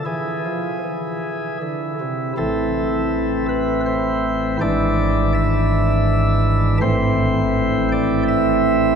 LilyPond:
<<
  \new Staff \with { instrumentName = "Pipe organ" } { \time 3/4 \key a \minor \tempo 4 = 81 gis'2 r4 | a'4. b'8 c''4 | d''4 e''2 | c''4. d''8 e''4 | }
  \new Staff \with { instrumentName = "Pipe organ" } { \clef bass \time 3/4 \key a \minor << { e'2. | <a,, a, e c' e'>2. | <gis,, gis, e d' e'>2. | <a,, a, e c' e'>2. | } \\ { e8 f8 e4 d8 c8 | r2. | r2. | r2. | } >> }
>>